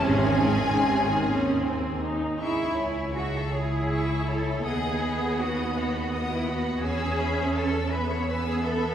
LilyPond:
<<
  \new Staff \with { instrumentName = "Violin section" } { \time 6/8 \key cis \minor \tempo 4. = 54 gis''2~ gis''8 r8 | cis'''8 gis''8 cis'''8 gis''8 cis'''8 gis''8 | dis'''8 b''8 dis'''8 b''8 dis'''8 b''8 | e'''8 b''8 e'''8 b''8 e'''8 b''8 | }
  \new Staff \with { instrumentName = "Violin section" } { \time 6/8 \key cis \minor gis'2~ gis'8 r8 | <gis' e''>8 cis''8 <gis' e''>8 cis''8 <gis' e''>8 cis''8 | <dis'' fis''>8 <dis'' fis''>8 <dis'' fis''>8 <dis'' fis''>8 <dis'' fis''>8 <dis'' fis''>8 | <b' gis''>8 <e'' b''>8 <b' gis''>8 <e'' b''>8 <b' gis''>8 <e'' b''>8 | }
  \new Staff \with { instrumentName = "Cello section" } { \time 6/8 \key cis \minor bis2~ bis16 r8. | e'4 fis'16 a'16 gis'4 a'8 | gis'4 fis'8 fis'8. e'16 fis'8 | gis'4 a'8 b'16 cis''16 b'16 gis'16 a'8 | }
  \new Staff \with { instrumentName = "Viola section" } { \time 6/8 \key cis \minor << { cis'4. cis'8 bis8 dis'8 | r4. e'4. | b2. | cis'4. b4. | } \\ { bis,16 dis16 gis16 dis16 bis,16 dis16 r4. | r2. | r2. | r2. | } >> }
  \new Staff \with { instrumentName = "Double bass section" } { \clef bass \time 6/8 \key cis \minor gis,,4. dis,4. | cis,2. | dis,2. | e,2. | }
>>